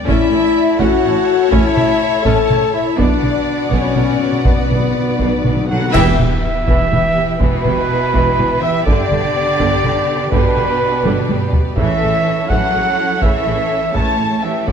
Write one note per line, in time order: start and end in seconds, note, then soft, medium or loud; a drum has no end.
0.00 0.79 D5 medium
0.07 0.16 A1 medium
0.07 0.15 A2 medium
0.07 2.98 A3 medium
0.07 0.30 C#4 medium
0.07 2.98 E4 medium
0.07 0.81 E4 medium
0.07 0.76 E4 loud
0.07 2.98 A4 medium
0.07 0.75 E5 loud
0.07 2.98 A5 medium
0.07 taiko medium
0.31 0.40 A1 medium
0.31 0.39 A2 medium
0.31 0.40 C#4 medium
0.31 0.41 E4 medium
0.79 0.88 A1 medium
0.79 0.87 A2 medium
0.79 1.02 C#4 medium
0.79 1.52 F#4 medium
0.79 1.53 F#4 loud
0.79 2.98 C#5 medium
0.79 1.52 F#5 medium
0.79 taiko medium
1.04 1.12 A1 medium
1.04 1.12 A2 medium
1.04 1.13 C#4 medium
1.04 1.12 E4 medium
1.52 1.61 A1 medium
1.52 1.60 A2 medium
1.52 1.75 C#4 medium
1.52 2.25 E4 loud
1.52 2.26 E4 medium
1.52 2.25 E5 medium
1.52 taiko medium
1.76 1.86 A1 soft
1.76 1.84 A2 medium
1.76 1.85 C#4 medium
1.76 1.85 E4 medium
1.76 taiko mid soft
2.23 2.33 A1 medium
2.23 2.32 A2 medium
2.23 2.48 C#4 medium
2.23 2.73 A4 loud
2.23 2.73 A4 medium
2.23 2.73 A5 medium
2.23 taiko medium
2.49 2.58 A1 medium
2.49 2.57 A2 medium
2.49 2.58 C#4 medium
2.49 2.58 E4 medium
2.49 taiko mid medium
2.74 2.98 E4 medium
2.74 2.99 E4 medium
2.74 2.97 E5 medium
2.96 3.07 B1 medium
2.96 3.05 B2 medium
2.96 5.91 B3 medium
2.96 3.21 B3 medium
2.96 3.70 D4 medium
2.96 5.94 F#4 medium
2.96 5.91 B4 medium
2.96 3.71 D5 medium
2.96 5.66 D5 medium
2.96 5.94 F#5 medium
2.96 taiko medium
3.13 3.19 B2 soft
3.21 3.31 B1 medium
3.21 3.27 B2 soft
3.21 3.30 B2 medium
3.21 3.31 B3 soft
3.21 3.31 D4 soft
3.21 taiko mid soft
3.28 3.33 B2 soft
3.35 3.41 B2 soft
3.43 3.49 B2 soft
3.50 3.56 B2 soft
3.65 3.71 B2 soft
3.71 3.79 B1 medium
3.71 3.79 B2 medium
3.71 3.79 B2 soft
3.71 3.94 B3 medium
3.71 4.44 C#4 medium
3.71 4.46 C#4 medium
3.71 4.46 C#5 medium
3.71 taiko medium
3.80 3.86 B2 soft
3.87 3.93 B2 soft
3.94 4.04 B1 medium
3.94 4.01 B2 soft
3.94 4.03 B2 soft
3.94 4.05 B3 medium
3.94 4.05 D4 medium
3.94 taiko mid medium
4.02 4.08 B2 soft
4.10 4.16 B2 soft
4.17 4.24 B2 medium
4.25 4.31 B2 medium
4.32 4.38 B2 medium
4.40 4.46 B2 medium
4.45 4.54 B1 medium
4.45 4.53 B2 medium
4.45 4.55 B2 medium
4.45 5.67 B3 medium
4.45 4.69 B3 medium
4.45 5.67 B4 medium
4.45 taiko medium
4.56 4.62 B2 medium
4.64 4.70 B2 medium
4.69 4.78 B1 soft
4.69 4.77 B2 soft
4.69 4.78 B2 medium
4.69 4.78 B3 soft
4.69 4.79 D4 soft
4.69 taiko mid soft
4.79 4.86 B2 medium
4.87 4.94 B2 medium
4.95 5.01 B2 medium
5.02 5.09 B2 medium
5.10 5.17 B2 medium
5.19 5.28 B1 medium
5.19 5.25 B2 medium
5.19 5.27 B2 medium
5.19 5.43 B3 medium
5.19 taiko medium
5.26 5.32 B2 medium
5.33 5.40 B2 medium
5.41 5.47 B2 medium
5.41 5.52 B2 soft
5.41 5.53 B3 soft
5.41 5.53 D4 medium
5.41 taiko mid medium
5.45 5.53 B1 soft
5.45 5.55 B2 medium
5.56 5.63 B2 medium
5.64 5.71 B2 medium
5.69 5.79 B2 medium
5.69 5.93 F#3 medium
5.69 5.93 A4 medium
5.69 5.92 F#5 medium
5.69 5.93 F#5 medium
5.80 5.87 B2 medium
5.88 5.94 B2 medium
5.92 6.17 E1 loud
5.92 7.37 E3 medium
5.92 6.17 E3 loud
5.92 11.72 B3 loud
5.92 8.82 E4 loud
5.92 7.37 G4 loud
5.92 11.72 B4 loud
5.92 7.37 E5 medium
5.92 7.24 E5 loud
5.92 8.82 G5 medium
5.92 concert bass drum medium
5.92 taiko medium
5.92 crash medium
6.19 6.27 E1 medium
6.19 6.27 E3 medium
6.19 6.27 G3 medium
6.19 taiko mid soft
6.42 6.52 B3 medium
6.42 6.51 G4 medium
6.68 6.76 E1 medium
6.68 6.91 E3 medium
6.68 taiko medium
6.92 7.01 E1 medium
6.92 7.00 E3 soft
6.92 7.00 G3 medium
6.92 taiko mid medium
7.16 7.25 B3 medium
7.16 7.25 G4 medium
7.41 7.49 E1 medium
7.41 8.60 B2 medium
7.41 7.63 E3 medium
7.41 8.60 E4 medium
7.41 8.64 B4 medium
7.41 8.60 B4 medium
7.41 taiko medium
7.65 7.75 E1 medium
7.65 7.73 E3 medium
7.65 7.73 G3 medium
7.65 taiko mid soft
7.90 7.98 B3 medium
7.90 7.99 G4 medium
8.14 8.22 E1 medium
8.14 8.37 E3 medium
8.14 taiko medium
8.38 8.47 E1 medium
8.38 8.47 E3 medium
8.38 8.46 G3 medium
8.38 taiko mid medium
8.62 8.87 E3 medium
8.62 8.71 B3 medium
8.62 8.86 G4 medium
8.62 8.72 G4 medium
8.62 8.87 E5 medium
8.85 8.96 G1 medium
8.85 10.29 D3 medium
8.85 9.10 D3 medium
8.85 11.77 G4 medium
8.85 10.30 G4 medium
8.85 11.76 D5 medium
8.85 10.29 D5 medium
8.85 10.30 D5 loud
8.85 taiko medium
9.11 9.20 G1 medium
9.11 9.20 D3 medium
9.11 9.20 G3 medium
9.11 taiko mid medium
9.36 9.44 B3 medium
9.36 9.44 G4 medium
9.60 9.69 G1 medium
9.60 9.83 D3 medium
9.60 taiko medium
9.84 9.94 G1 medium
9.84 9.93 D3 medium
9.84 9.93 G3 medium
9.84 taiko mid soft
10.08 10.17 B3 medium
10.08 10.17 G4 medium
10.32 10.41 G1 medium
10.32 11.51 B2 medium
10.32 10.55 D3 medium
10.32 11.51 D4 medium
10.32 11.51 B4 loud
10.32 11.51 B4 medium
10.32 taiko medium
10.57 10.67 G1 medium
10.57 10.65 D3 medium
10.57 10.65 G3 medium
10.57 taiko mid soft
10.81 10.90 B3 medium
10.81 10.90 G4 medium
11.05 11.14 G1 medium
11.05 11.28 D3 medium
11.05 taiko high medium
11.29 11.39 G1 medium
11.29 11.38 D3 medium
11.29 11.38 G3 medium
11.29 taiko high medium
11.53 11.62 B3 medium
11.53 11.62 G4 medium
11.53 taiko low medium
11.77 11.87 A1 medium
11.77 12.00 C#3 medium
11.77 12.45 E3 medium
11.77 12.00 E3 medium
11.77 14.68 C#4 medium
11.77 14.68 E4 medium
11.77 14.68 A4 medium
11.77 12.46 A4 medium
11.77 14.68 C#5 medium
11.77 12.51 E5 loud
11.77 12.46 E5 medium
11.77 taiko medium
12.01 12.11 A1 medium
12.01 12.10 C#3 medium
12.01 12.09 A3 soft
12.26 12.35 C#4 medium
12.26 12.34 E4 medium
12.49 12.59 A1 medium
12.49 12.72 C#3 medium
12.49 12.72 E3 medium
12.49 13.22 F#3 medium
12.49 13.20 A4 medium
12.49 13.24 F#5 loud
12.49 13.21 F#5 medium
12.49 taiko medium
12.74 12.83 A1 soft
12.74 12.82 C#3 medium
12.74 12.82 A3 soft
12.99 13.07 C#4 medium
12.99 13.07 E4 medium
13.21 13.30 A1 medium
13.21 13.44 C#3 medium
13.21 13.44 E3 medium
13.21 13.93 E3 medium
13.21 13.93 A4 medium
13.21 13.97 E5 medium
13.21 13.95 E5 medium
13.21 taiko medium
13.46 13.54 A1 soft
13.46 13.54 C#3 soft
13.46 13.54 A3 soft
13.71 13.80 C#4 medium
13.71 13.79 E4 medium
13.95 14.04 A1 medium
13.95 14.17 C#3 medium
13.95 14.17 E3 medium
13.95 14.42 A3 medium
13.95 14.42 C#5 medium
13.95 14.42 A5 medium
13.95 14.46 A5 medium
13.95 taiko medium
14.19 14.27 A1 soft
14.19 14.27 C#3 soft
14.19 14.27 A3 soft
14.43 14.68 E3 medium
14.43 14.52 C#4 medium
14.43 14.53 E4 soft
14.43 14.67 G4 medium
14.43 14.67 E5 medium
14.43 14.68 E5 medium
14.66 14.72 B1 medium
14.66 14.72 D3 medium
14.66 14.72 B3 medium
14.66 14.72 F#4 medium
14.66 14.72 B4 medium
14.66 14.72 D5 medium
14.66 14.72 F#5 medium
14.66 taiko medium